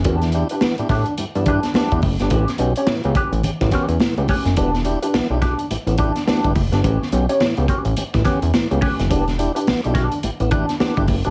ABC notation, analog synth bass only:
X:1
M:4/4
L:1/16
Q:"Swing 16ths" 1/4=106
K:Edor
V:1 name="Analog synth bass" clef=bass
E,,3 z2 A,, A,, z G,, G,,2 z2 E,, F,,, G,,, | A,,, z B,,, z2 C,, z A,,, A,,, A,,, z E,, C,, C,, z F,,, | E,,,3 z B,,, B,,,2 z A,,, A,,,2 z2 G,,, F,,, G,,, | A,,, z B,,, z2 C,, z A,,, A,,, A,,, z E,, C,, C,, z F,,, |
E,,,3 z B,,, B,,,2 z A,,, A,,,2 z2 G,,, F,,, G,,, |]